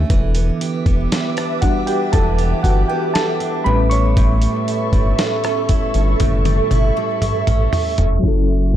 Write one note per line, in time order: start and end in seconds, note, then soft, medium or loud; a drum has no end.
0.00 1.57 D3 medium
0.00 0.20 A3 medium
0.00 0.20 C#4 medium
0.10 0.51 E1 loud
0.10 2.13 E3 medium
0.10 3.63 B4 medium
0.10 3.62 E5 medium
0.10 3.62 D6 medium
0.10 kick loud
0.10 closed hi-hat medium
0.35 0.85 B3 medium
0.35 closed hi-hat medium
0.61 1.12 G4 medium
0.61 closed hi-hat medium
0.86 1.06 E1 medium
0.86 2.37 B3 medium
0.86 kick loud
0.86 closed hi-hat soft
1.12 1.62 G4 medium
1.12 snare loud
1.12 closed hi-hat medium
1.37 1.87 D4 medium
1.37 cross-stick medium
1.37 closed hi-hat medium
1.61 2.30 G3 medium
1.61 2.30 D4 medium
1.61 1.87 F#4 medium
1.61 2.64 G4 medium
1.61 1.88 F#5 medium
1.61 kick medium
1.61 closed hi-hat medium
1.87 3.39 D4 medium
1.87 2.00 G4 medium
1.87 1.99 G5 medium
1.87 closed hi-hat medium
2.12 2.54 E1 loud
2.12 4.42 E3 medium
2.12 2.61 A4 medium
2.12 2.60 A5 loud
2.12 kick loud
2.12 closed hi-hat medium
2.38 2.88 B3 medium
2.38 closed hi-hat soft
2.63 2.84 G1 medium
2.63 2.76 F#4 medium
2.63 3.15 G4 medium
2.63 2.75 F#5 medium
2.63 kick medium
2.63 closed hi-hat medium
2.88 3.76 B3 medium
2.88 3.14 G4 medium
2.88 3.15 G5 medium
3.14 3.94 G4 medium
3.14 3.63 A4 medium
3.14 3.67 A5 loud
3.14 snare loud
3.14 closed hi-hat medium
3.40 3.76 D4 medium
3.40 closed hi-hat soft
3.64 4.47 A1 loud
3.64 4.16 A2 medium
3.64 7.68 G3 medium
3.64 7.68 B3 medium
3.64 7.69 C#4 medium
3.64 8.20 A4 medium
3.64 3.90 B4 medium
3.64 8.20 E5 medium
3.64 3.91 B5 loud
3.64 8.20 C#6 medium
3.90 5.44 C#4 medium
3.90 5.91 C#5 medium
3.90 5.90 C#6 loud
3.90 closed hi-hat medium
4.17 6.19 A2 loud
4.17 kick loud
4.17 closed hi-hat medium
4.42 4.92 G3 medium
4.42 closed hi-hat medium
4.68 5.18 E4 medium
4.68 closed hi-hat medium
4.93 5.13 G1 medium
4.93 6.45 G3 medium
4.93 kick loud
4.93 closed hi-hat medium
5.19 5.69 E4 medium
5.19 snare loud
5.19 closed hi-hat medium
5.44 5.94 C#4 medium
5.44 cross-stick medium
5.44 closed hi-hat medium
5.69 5.80 G1 soft
5.69 6.71 E4 medium
5.69 kick loud
5.69 closed hi-hat medium
5.94 6.15 G1 loud
5.94 7.47 C#4 medium
5.94 closed hi-hat medium
6.20 6.61 F#1 medium
6.20 8.34 A2 medium
6.20 kick loud
6.20 closed hi-hat medium
6.20 high tom medium
6.45 6.95 G3 medium
6.45 closed hi-hat soft
6.45 high tom medium
6.71 6.91 G1 loud
6.71 7.22 E4 medium
6.71 closed hi-hat medium
6.71 mid tom medium
6.97 8.24 G3 medium
7.22 7.32 A1 soft
7.22 7.73 E4 medium
7.22 closed hi-hat medium
7.22 mid tom medium
7.47 7.68 A1 medium
7.47 7.98 C#4 medium
7.47 closed hi-hat soft
7.47 mid tom medium
7.73 8.49 E4 medium
7.73 floor tom loud
7.73 open hi-hat medium
7.98 8.18 F1 loud
7.98 8.74 C#4 medium
7.98 closed hi-hat medium
7.98 floor tom loud
8.19 8.77 F#3 medium
8.19 8.77 C#4 medium
8.23 8.77 F#1 loud
8.23 8.77 F#3 medium
8.23 8.77 E4 medium
8.23 8.77 A4 medium
8.23 8.77 E5 medium
8.23 8.77 F#5 medium
8.23 8.77 C#6 medium
8.23 kick loud
8.23 closed hi-hat medium
8.28 8.77 A4 medium
8.49 8.77 E4 medium